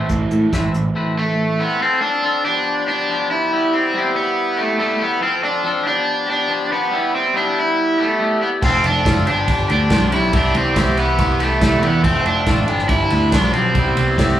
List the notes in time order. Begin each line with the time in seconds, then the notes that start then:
Already playing: A2 E3 C4 E4 A4
0.09 A1, kick, closed hi-hat
0.31 A2, muted clean electric guitar stroke, closed hi-hat
0.53 A1 A3 C4 E4 B4, kick, snare, closed hi-hat
0.74 A1, muted clean electric guitar stroke, closed hi-hat
0.95 A3 C4 E4 B4
1.16 A3, muted clean electric guitar stroke
1.38 muted clean electric guitar stroke
1.59 A3 B3 C4 E4 B4
1.79 C4 F4 A4
2.02 D4 F4 A4
2.22 C4 F4 A4
2.45 F3 B3 D4 G4
2.87 B3 D4 G4
3.09 F3 B3 D4 G4
3.31 B3 D4 E4 G4
3.51 G3 B3 E4 G4
3.72 B3 C4 E4 G4
3.94 G3 B3 E4 G4
4.16 B3
4.56 A3 B3 E4 G4
4.78 G3 A3 B3 E4 G4
4.99 B3 E4 G4
5.21 F3 C4 F4 A4
5.41 C4 D4 F4 A4
5.63 F3 C4 F4 A4
5.83 F3 B3 D4 G4
6.26 B3 D4 G4
6.48 F3 B3 D4 G4
6.71 B3 D4 G4
6.91 G3 B3 E4 G4
7.13 B3 C4 E4 G4
7.34 G3 B3 D4 E4 G4
7.59 E4
7.98 A3 B3 E4 G4
8.19 G3 B3 E4 G4
8.40 B3 E4 G4
8.61 F1 F2 F3 C4 F4 A4, kick, crash
8.82 F1 A3 C4 F4 A4, ride
8.87 D4
9.05 F#1 F3 C4 F4 A4, kick, snare, ride
9.26 G1 G2 F3 B3 D4 G4, ride
9.47 G1 G4, kick, ride
9.68 D2 G3 D4 G4, ride
9.72 B3
9.89 B1 F3 B3 D4 G4, kick, snare, ride
10.10 B1 G3 B3 D4 E4 G4, ride
10.32 C2 C3 E3 B3 D4 E4 G4, kick, ride
10.53 C2 G3 B3 E4 G4, ride
10.57 C4
10.75 C2 E3 B3 E4 G4, kick, snare, ride
10.97 B3, ride
11.19 C2 G4, kick, ride
11.39 G3 A3 B3 E4 G4, ride
11.60 C2 E3 A3 B3 E4, kick, snare, ride
11.64 G4
11.81 E2 G3 B3 E4 G4, ride
12.02 F1 F2 F3 A3 C4, kick, ride
12.07 C4
12.24 F1 A3 C4 D4, ride
12.28 A3
12.45 A1 F3 A3 C4 F4, kick, snare, ride
12.67 G1 G2 F3 B3 D4, ride
12.79 snare
12.87 G1 E4 G4, kick, ride
13.09 D2 G3 D4, ride
13.14 B3
13.31 B1 F3 B3 D4, kick, snare, ride
13.35 D4
13.52 B1 G3 C4 D4, ride
13.57 B3
13.73 C2 C3 G3 B3, kick, ride
13.79 E4
13.95 C2 B3 E4, ride
14.01 B3
14.16 C2 G3 B3 G4, kick, snare, ride
14.21 E4